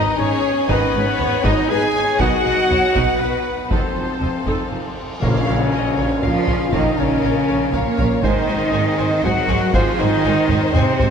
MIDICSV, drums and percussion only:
0, 0, Header, 1, 3, 480
1, 0, Start_track
1, 0, Tempo, 502934
1, 662, Time_signature, 3, 2, 24, 8
1, 10595, End_track
2, 0, Start_track
2, 0, Title_t, "Taiko and cinematic ensemble drums"
2, 660, Note_on_c, 9, 41, 100
2, 755, Note_off_c, 9, 41, 0
2, 1139, Note_on_c, 9, 45, 60
2, 1234, Note_off_c, 9, 45, 0
2, 1377, Note_on_c, 9, 41, 88
2, 1472, Note_off_c, 9, 41, 0
2, 2096, Note_on_c, 9, 41, 104
2, 2191, Note_off_c, 9, 41, 0
2, 2582, Note_on_c, 9, 45, 61
2, 2677, Note_off_c, 9, 45, 0
2, 2821, Note_on_c, 9, 41, 83
2, 2916, Note_off_c, 9, 41, 0
2, 3540, Note_on_c, 9, 41, 103
2, 3635, Note_off_c, 9, 41, 0
2, 4023, Note_on_c, 9, 45, 60
2, 4119, Note_off_c, 9, 45, 0
2, 4261, Note_on_c, 9, 41, 77
2, 4357, Note_off_c, 9, 41, 0
2, 4984, Note_on_c, 9, 41, 96
2, 5079, Note_off_c, 9, 41, 0
2, 5940, Note_on_c, 9, 43, 71
2, 6036, Note_off_c, 9, 43, 0
2, 6179, Note_on_c, 9, 43, 63
2, 6275, Note_off_c, 9, 43, 0
2, 6418, Note_on_c, 9, 41, 100
2, 6514, Note_off_c, 9, 41, 0
2, 7375, Note_on_c, 9, 43, 66
2, 7470, Note_off_c, 9, 43, 0
2, 7616, Note_on_c, 9, 43, 63
2, 7711, Note_off_c, 9, 43, 0
2, 7856, Note_on_c, 9, 41, 99
2, 7951, Note_off_c, 9, 41, 0
2, 8816, Note_on_c, 9, 43, 71
2, 8912, Note_off_c, 9, 43, 0
2, 9056, Note_on_c, 9, 43, 66
2, 9151, Note_off_c, 9, 43, 0
2, 9293, Note_on_c, 9, 41, 102
2, 9388, Note_off_c, 9, 41, 0
2, 9533, Note_on_c, 9, 37, 44
2, 9628, Note_off_c, 9, 37, 0
2, 10013, Note_on_c, 9, 45, 97
2, 10108, Note_off_c, 9, 45, 0
2, 10253, Note_on_c, 9, 45, 94
2, 10348, Note_off_c, 9, 45, 0
2, 10491, Note_on_c, 9, 43, 110
2, 10586, Note_off_c, 9, 43, 0
2, 10595, End_track
3, 0, Start_track
3, 0, Title_t, "Tam-tam"
3, 4984, Note_on_c, 9, 52, 64
3, 5079, Note_off_c, 9, 52, 0
3, 10595, End_track
0, 0, End_of_file